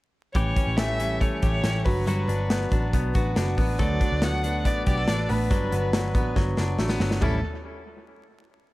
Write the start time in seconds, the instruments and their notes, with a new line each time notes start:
0.34 picked electric bass A1, steel-string acoustic guitar A2 E3 G3 C#4 G4, violin C#5, kick, closed hi-hat
0.55 steel-string acoustic guitar E3 G3 C#4 G4, kick, closed hi-hat
0.67 picked electric bass A1
0.77 clean electric guitar A3, violin E5, snare, closed hi-hat
0.99 steel-string acoustic guitar E3 G3 C#4 G4, closed hi-hat
1.20 clean electric guitar A3, violin C#5, kick, closed hi-hat
1.42 picked electric bass A1, steel-string acoustic guitar E3 G3 C#4 G4, violin C#5, kick, closed hi-hat
1.63 picked electric bass A1, steel-string acoustic guitar E3 G3 C#4 G4, snare, closed hi-hat
1.84 picked electric bass G1, clean electric guitar F#3, steel-string acoustic guitar B3 D4 F#4 B4, violin B4, kick, open hi-hat
2.06 picked electric bass G1, clean electric guitar F#3, steel-string acoustic guitar G3 B3 D4 F#4 B4, closed hi-hat
2.28 picked electric bass G1, steel-string acoustic guitar B3 D4 F#4 B4, closed hi-hat
2.50 clean electric guitar B3, snare, closed hi-hat
2.71 picked electric bass A1, steel-string acoustic guitar B3 D4 F#4 B4, kick, closed hi-hat
2.93 picked electric bass B1, clean electric guitar B3, kick, closed hi-hat
3.14 picked electric bass A1, steel-string acoustic guitar B3 D4 F#4 B4, kick, closed hi-hat
3.36 picked electric bass F#1, steel-string acoustic guitar B3 D4 F#4 B4, snare, closed hi-hat
3.57 picked electric bass A1, steel-string acoustic guitar B3 D4 F#4 B4, kick, open hi-hat
3.79 picked electric bass D2, steel-string acoustic guitar D3 F#3 A3 D4 F#4 B4, clean electric guitar A4, violin D5, kick, closed hi-hat
4.01 steel-string acoustic guitar A3 D4 F#4 B4, kick, closed hi-hat
4.12 picked electric bass D2
4.22 clean electric guitar B3, violin F#5, snare, closed hi-hat
4.43 steel-string acoustic guitar A3 D4 F#4 B4, closed hi-hat
4.65 picked electric bass A1, clean electric guitar B3, violin D5, kick, closed hi-hat
4.86 picked electric bass B1, steel-string acoustic guitar A3 D4 F#4 B4, clean electric guitar G4, violin D5, kick, closed hi-hat
4.97 clean electric guitar A4
5.07 picked electric bass A1, steel-string acoustic guitar A3 D4 F#4 B4, snare, closed hi-hat
5.29 picked electric bass A1, steel-string acoustic guitar A3 D4 F#4 B4, clean electric guitar B3, violin B4, open hi-hat
5.50 picked electric bass G1, clean electric guitar F#3, steel-string acoustic guitar G3 B3 D4 F#4 B4, kick, closed hi-hat
5.72 picked electric bass G1, steel-string acoustic guitar B3 D4 F#4 B4, closed hi-hat
5.93 clean electric guitar F#3, snare, closed hi-hat
6.15 picked electric bass A1, steel-string acoustic guitar B3 D4 F#4 B4, kick, closed hi-hat
6.36 picked electric bass G1, clean electric guitar F#3, kick, snare
6.57 picked electric bass F#1, steel-string acoustic guitar B3 D4 F#4 B4, snare
6.78 picked electric bass A1, clean electric guitar A3, steel-string acoustic guitar B3 D4 F#4 B4, snare
6.89 clean electric guitar B3, snare
7.00 picked electric bass G1, clean electric guitar F#3, steel-string acoustic guitar B3 D4 F#4 B4, snare
7.11 snare
7.20 picked electric bass A1, steel-string acoustic guitar A2 E3 G3 C#4 E4 A4, violin A4, kick, floor tom, crash